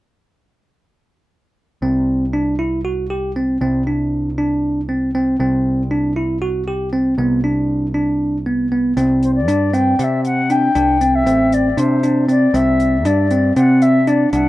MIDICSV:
0, 0, Header, 1, 5, 480
1, 0, Start_track
1, 0, Tempo, 510204
1, 1715, Time_signature, 7, 3, 24, 8
1, 13629, End_track
2, 0, Start_track
2, 0, Title_t, "Flute"
2, 0, Program_c, 0, 73
2, 8682, Note_on_c, 0, 72, 67
2, 8793, Note_off_c, 0, 72, 0
2, 8798, Note_on_c, 0, 74, 70
2, 9162, Note_on_c, 0, 79, 72
2, 9177, Note_off_c, 0, 74, 0
2, 9405, Note_on_c, 0, 78, 69
2, 9419, Note_off_c, 0, 79, 0
2, 9443, Note_on_c, 0, 76, 75
2, 9453, Note_off_c, 0, 78, 0
2, 9642, Note_off_c, 0, 76, 0
2, 9646, Note_on_c, 0, 78, 78
2, 9893, Note_on_c, 0, 79, 73
2, 9907, Note_off_c, 0, 78, 0
2, 10492, Note_on_c, 0, 76, 76
2, 10507, Note_off_c, 0, 79, 0
2, 10855, Note_on_c, 0, 74, 72
2, 10869, Note_off_c, 0, 76, 0
2, 11093, Note_on_c, 0, 72, 68
2, 11107, Note_off_c, 0, 74, 0
2, 11566, Note_off_c, 0, 72, 0
2, 11571, Note_on_c, 0, 74, 71
2, 11812, Note_on_c, 0, 76, 78
2, 11826, Note_off_c, 0, 74, 0
2, 12290, Note_on_c, 0, 74, 70
2, 12304, Note_off_c, 0, 76, 0
2, 12765, Note_off_c, 0, 74, 0
2, 12769, Note_on_c, 0, 78, 77
2, 13005, Note_on_c, 0, 76, 76
2, 13019, Note_off_c, 0, 78, 0
2, 13249, Note_on_c, 0, 74, 67
2, 13263, Note_off_c, 0, 76, 0
2, 13476, Note_off_c, 0, 74, 0
2, 13482, Note_on_c, 0, 78, 79
2, 13629, Note_off_c, 0, 78, 0
2, 13629, End_track
3, 0, Start_track
3, 0, Title_t, "Tine electric piano"
3, 0, Program_c, 1, 4
3, 1716, Note_on_c, 1, 60, 58
3, 2110, Note_off_c, 1, 60, 0
3, 2196, Note_on_c, 1, 62, 59
3, 2393, Note_off_c, 1, 62, 0
3, 2436, Note_on_c, 1, 64, 57
3, 2633, Note_off_c, 1, 64, 0
3, 2678, Note_on_c, 1, 66, 55
3, 2874, Note_off_c, 1, 66, 0
3, 2919, Note_on_c, 1, 67, 54
3, 3115, Note_off_c, 1, 67, 0
3, 3162, Note_on_c, 1, 60, 56
3, 3357, Note_off_c, 1, 60, 0
3, 3401, Note_on_c, 1, 60, 60
3, 3596, Note_off_c, 1, 60, 0
3, 3643, Note_on_c, 1, 62, 52
3, 4035, Note_off_c, 1, 62, 0
3, 4123, Note_on_c, 1, 62, 60
3, 4515, Note_off_c, 1, 62, 0
3, 4601, Note_on_c, 1, 60, 52
3, 4796, Note_off_c, 1, 60, 0
3, 4843, Note_on_c, 1, 60, 61
3, 5038, Note_off_c, 1, 60, 0
3, 5083, Note_on_c, 1, 60, 59
3, 5475, Note_off_c, 1, 60, 0
3, 5561, Note_on_c, 1, 62, 60
3, 5757, Note_off_c, 1, 62, 0
3, 5799, Note_on_c, 1, 64, 55
3, 5996, Note_off_c, 1, 64, 0
3, 6037, Note_on_c, 1, 66, 61
3, 6235, Note_off_c, 1, 66, 0
3, 6281, Note_on_c, 1, 67, 58
3, 6477, Note_off_c, 1, 67, 0
3, 6519, Note_on_c, 1, 60, 59
3, 6716, Note_off_c, 1, 60, 0
3, 6759, Note_on_c, 1, 59, 64
3, 6956, Note_off_c, 1, 59, 0
3, 6999, Note_on_c, 1, 62, 55
3, 7393, Note_off_c, 1, 62, 0
3, 7475, Note_on_c, 1, 62, 58
3, 7871, Note_off_c, 1, 62, 0
3, 7961, Note_on_c, 1, 59, 55
3, 8157, Note_off_c, 1, 59, 0
3, 8200, Note_on_c, 1, 59, 58
3, 8397, Note_off_c, 1, 59, 0
3, 8440, Note_on_c, 1, 60, 63
3, 8834, Note_off_c, 1, 60, 0
3, 8919, Note_on_c, 1, 62, 64
3, 9116, Note_off_c, 1, 62, 0
3, 9157, Note_on_c, 1, 60, 62
3, 9356, Note_off_c, 1, 60, 0
3, 9398, Note_on_c, 1, 60, 61
3, 9793, Note_off_c, 1, 60, 0
3, 9881, Note_on_c, 1, 62, 58
3, 10078, Note_off_c, 1, 62, 0
3, 10118, Note_on_c, 1, 62, 62
3, 10316, Note_off_c, 1, 62, 0
3, 10361, Note_on_c, 1, 60, 57
3, 10558, Note_off_c, 1, 60, 0
3, 10598, Note_on_c, 1, 60, 67
3, 10993, Note_off_c, 1, 60, 0
3, 11079, Note_on_c, 1, 62, 59
3, 11276, Note_off_c, 1, 62, 0
3, 11322, Note_on_c, 1, 62, 55
3, 11518, Note_off_c, 1, 62, 0
3, 11560, Note_on_c, 1, 60, 61
3, 11757, Note_off_c, 1, 60, 0
3, 11800, Note_on_c, 1, 60, 63
3, 12194, Note_off_c, 1, 60, 0
3, 12279, Note_on_c, 1, 62, 66
3, 12477, Note_off_c, 1, 62, 0
3, 12521, Note_on_c, 1, 60, 62
3, 12718, Note_off_c, 1, 60, 0
3, 12763, Note_on_c, 1, 60, 62
3, 13156, Note_off_c, 1, 60, 0
3, 13243, Note_on_c, 1, 62, 66
3, 13439, Note_off_c, 1, 62, 0
3, 13482, Note_on_c, 1, 62, 65
3, 13629, Note_off_c, 1, 62, 0
3, 13629, End_track
4, 0, Start_track
4, 0, Title_t, "Picked electric bass"
4, 0, Program_c, 2, 34
4, 1712, Note_on_c, 2, 36, 63
4, 3361, Note_off_c, 2, 36, 0
4, 3396, Note_on_c, 2, 36, 63
4, 5044, Note_off_c, 2, 36, 0
4, 5076, Note_on_c, 2, 36, 63
4, 6724, Note_off_c, 2, 36, 0
4, 6753, Note_on_c, 2, 36, 64
4, 8403, Note_off_c, 2, 36, 0
4, 8436, Note_on_c, 2, 36, 78
4, 8917, Note_off_c, 2, 36, 0
4, 8917, Note_on_c, 2, 43, 66
4, 9348, Note_off_c, 2, 43, 0
4, 9400, Note_on_c, 2, 48, 65
4, 10044, Note_off_c, 2, 48, 0
4, 10118, Note_on_c, 2, 36, 79
4, 10596, Note_off_c, 2, 36, 0
4, 10596, Note_on_c, 2, 33, 69
4, 11028, Note_off_c, 2, 33, 0
4, 11076, Note_on_c, 2, 48, 70
4, 11722, Note_off_c, 2, 48, 0
4, 11795, Note_on_c, 2, 36, 86
4, 12278, Note_off_c, 2, 36, 0
4, 12278, Note_on_c, 2, 43, 74
4, 12709, Note_off_c, 2, 43, 0
4, 12761, Note_on_c, 2, 48, 69
4, 13405, Note_off_c, 2, 48, 0
4, 13481, Note_on_c, 2, 36, 82
4, 13629, Note_off_c, 2, 36, 0
4, 13629, End_track
5, 0, Start_track
5, 0, Title_t, "Drums"
5, 8439, Note_on_c, 9, 42, 55
5, 8533, Note_off_c, 9, 42, 0
5, 8680, Note_on_c, 9, 42, 46
5, 8775, Note_off_c, 9, 42, 0
5, 8922, Note_on_c, 9, 42, 62
5, 9016, Note_off_c, 9, 42, 0
5, 9164, Note_on_c, 9, 42, 47
5, 9258, Note_off_c, 9, 42, 0
5, 9402, Note_on_c, 9, 42, 62
5, 9496, Note_off_c, 9, 42, 0
5, 9640, Note_on_c, 9, 42, 49
5, 9734, Note_off_c, 9, 42, 0
5, 9877, Note_on_c, 9, 42, 50
5, 9971, Note_off_c, 9, 42, 0
5, 10117, Note_on_c, 9, 42, 65
5, 10211, Note_off_c, 9, 42, 0
5, 10359, Note_on_c, 9, 42, 49
5, 10453, Note_off_c, 9, 42, 0
5, 10601, Note_on_c, 9, 42, 71
5, 10695, Note_off_c, 9, 42, 0
5, 10842, Note_on_c, 9, 42, 55
5, 10936, Note_off_c, 9, 42, 0
5, 11082, Note_on_c, 9, 42, 68
5, 11176, Note_off_c, 9, 42, 0
5, 11320, Note_on_c, 9, 42, 49
5, 11415, Note_off_c, 9, 42, 0
5, 11562, Note_on_c, 9, 42, 42
5, 11656, Note_off_c, 9, 42, 0
5, 11802, Note_on_c, 9, 42, 66
5, 11896, Note_off_c, 9, 42, 0
5, 12041, Note_on_c, 9, 42, 49
5, 12135, Note_off_c, 9, 42, 0
5, 12279, Note_on_c, 9, 42, 63
5, 12373, Note_off_c, 9, 42, 0
5, 12518, Note_on_c, 9, 42, 47
5, 12612, Note_off_c, 9, 42, 0
5, 12761, Note_on_c, 9, 42, 64
5, 12855, Note_off_c, 9, 42, 0
5, 13000, Note_on_c, 9, 42, 46
5, 13094, Note_off_c, 9, 42, 0
5, 13241, Note_on_c, 9, 42, 44
5, 13335, Note_off_c, 9, 42, 0
5, 13480, Note_on_c, 9, 42, 59
5, 13574, Note_off_c, 9, 42, 0
5, 13629, End_track
0, 0, End_of_file